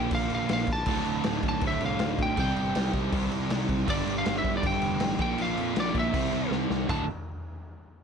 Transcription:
Already playing: overdriven electric guitar A#2 F3 A#3, distorted electric guitar A#2 F3 A#3, lead electric guitar G5
0.11 picked electric bass A#1, lead electric guitar F5, kick, crash
0.30 picked electric bass A#1, crash
0.35 lead electric guitar F5
0.49 picked electric bass A#1, snare, crash
0.53 lead electric guitar F5
0.67 picked electric bass A#1, kick, crash
0.73 lead electric guitar A5
0.86 picked electric bass D1, distorted electric guitar D2 A2 D3, kick, crash
1.05 picked electric bass D1, crash
1.24 picked electric bass D1, snare, crash
1.43 picked electric bass D1, kick, crash
1.49 lead electric guitar A5
1.61 picked electric bass D1, distorted electric guitar D2 A2 D3, kick, crash
1.67 lead electric guitar E5
1.81 picked electric bass C2, crash
1.86 lead electric guitar F5
1.99 picked electric bass D1, snare, crash
2.19 picked electric bass D2, lead electric guitar G5, kick, crash
2.37 picked electric bass C2, distorted electric guitar C3 G3 C4, lead electric guitar G5, kick, crash
2.57 picked electric bass G1, crash
2.75 picked electric bass C2, snare, crash
2.93 picked electric bass C2, kick, crash
3.12 picked electric bass C2, distorted electric guitar C3 G3 C4, kick, crash
3.31 picked electric bass C2, crash
3.49 picked electric bass C2, snare, crash
3.69 picked electric bass C2, kick, crash
3.88 picked electric bass G1, distorted electric guitar G2 D3 G3, lead electric guitar D5, kick, crash
4.07 picked electric bass G1, crash
4.18 lead electric guitar F5
4.26 picked electric bass G1, snare, crash
4.38 lead electric guitar E5
4.44 picked electric bass G1, kick, crash
4.57 lead electric guitar D5
4.63 picked electric bass G1, distorted electric guitar G2 D3 G3, lead electric guitar G5, kick, crash
4.82 picked electric bass F1, crash
5.00 picked electric bass A1, snare, crash
5.19 picked electric bass A#1, distorted electric guitar A#2 F3 A#3, lead electric guitar G5, kick, crash
5.38 picked electric bass A#1, lead electric guitar F5, crash
5.58 picked electric bass F2, crash
5.76 picked electric bass A#1, snare, crash
5.80 lead electric guitar D5
5.94 picked electric bass A#1, distorted electric guitar A#2 F3 A#3, kick, crash
5.99 lead electric guitar E5
6.14 picked electric bass C2, distorted electric guitar C3 G3 C4, kick, crash
6.33 picked electric bass C2, crash
6.51 picked electric bass C2, snare
6.70 picked electric bass C2, snare
6.88 picked electric bass D1, distorted electric guitar D2 A2 D3, lead electric guitar A5, kick, floor tom, crash

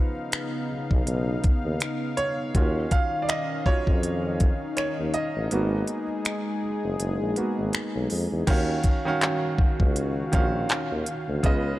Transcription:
Already playing: analog synth pad C#3 B3 D#4 F5, grand piano F3 B3 D#4 B4
0.32 finger snap, closed hi-hat
0.70 tuba B1
0.91 tuba B1, kick
1.07 tuba B1, closed hi-hat
1.44 kick, closed hi-hat
1.65 tuba D#2
1.80 finger snap, closed hi-hat
2.17 grand piano C#5, closed hi-hat
2.55 tuba D#2, analog synth pad D#3 C#4 D#4, grand piano C#4 F4 F#4, kick, closed hi-hat
2.91 grand piano F5, kick, closed hi-hat
3.22 grand piano D5
3.29 grand piano D#5, finger snap, closed hi-hat
3.66 tuba F2, grand piano F#3 C#4 F4 C#5, kick
3.87 tuba F2, kick
4.03 closed hi-hat
4.40 kick, closed hi-hat
4.77 tuba D#2, grand piano C#5, finger snap, closed hi-hat
4.99 tuba D#2
5.14 grand piano D#5, closed hi-hat
5.36 tuba A1
5.51 tuba G#1, analog synth pad G#3 G#4, grand piano A#3 B3 F#4, closed hi-hat
5.88 closed hi-hat
6.25 finger snap, closed hi-hat
6.63 tuba F#1
6.84 tuba F#1
6.99 tuba F#1, closed hi-hat
7.21 tuba A#1
7.36 grand piano A#3 B3 F#4, closed hi-hat
7.58 tuba G#1
7.73 finger snap, closed hi-hat
7.95 tuba B1
8.10 tuba F2, open hi-hat
8.32 tuba E2
8.47 tuba D#2, grand piano D#3 C#4 F#4 F5, analog synth pad D#3 C#4 F#4 F5, kick, closed hi-hat, crash
8.83 kick, closed hi-hat
9.05 grand piano D#3 C#4 F#4 F5
9.21 clap, closed hi-hat
9.58 tuba C#2, kick
9.80 tuba C#2, kick
9.96 closed hi-hat
10.32 tuba A#1, grand piano D#3 C#4 F4 F5, kick, closed hi-hat
10.40 grand piano F#4
10.69 tuba D#2, clap, closed hi-hat
10.91 tuba D#2
11.06 closed hi-hat
11.28 tuba D2
11.43 tuba C#2, grand piano C#3 B3 F4 D#5, analog synth pad C#3 B3 D#4, kick, closed hi-hat

